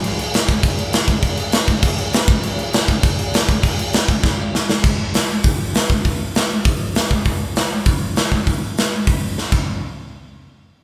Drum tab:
CC |xxxxxxxx|xxxxxxxx|xxxxxxxx|xxxx----|
HH |--------|--------|--------|--------|
SD |--o---o-|--o---o-|--o---o-|--o-o-oo|
BD |---oo--o|o--oo--o|---oo--o|o--oo---|

CC |x-------|--------|--------|-------x|
HH |--o-o-o-|o-o-o-o-|o-o-o-o-|o-o-o---|
SD |--o---o-|--o---o-|--o---o-|--o---o-|
BD |o---o--o|o---o--o|o---o--o|o---o--o|

CC |--------|
HH |--------|
SD |--------|
BD |--------|